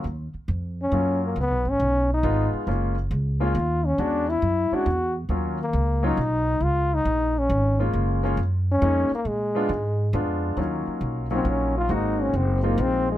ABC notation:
X:1
M:3/4
L:1/8
Q:"Swing" 1/4=137
K:Ebm
V:1 name="Grand piano"
z4 [G,B,DF]2 | z4 [A,CEF]2 | [A,B,DF] z2 [A,B,DF] z2 | [^G,^C=D^F] z2 [G,CD=E] z2 |
[G,B,DF] z2 [G,B,DF] z2 | z4 z [A,B,DF]- | [A,B,DF] [A,B,DF] z2 [A,B,DE] z | z [A,C=DF] z2 [A,CDF]2 |
[G,B,DEF]3 [G,B,DEF]3 | [A,B,=CEG]3 [A,B,CEF]3 |]
V:2 name="Trombone"
z3 D2 B, | C D2 E2 z | z3 F2 D | =D =E2 ^F2 z |
z B,2 E3 | F E2 D2 z | z3 D2 B, | A,4 z2 |
z3 =C D F | E D =C B, C A, |]
V:3 name="Upright bass" clef=bass
E,, z F,,2 G,,2 | (3D,, C,, A,,, C,,2 A,,, z | G,,,2 D,,2 E,,2 | =E,,2 ^F,, z E,,2 |
E,,2 D,,2 C,,2 | D,,2 B,,,2 A,,,2 | G,,,2 G,,2 F,, z | B,,2 A,,2 F,,2 |
E,, z C,,2 B,,,2 | A,,,2 G,,,2 B,,,2 |]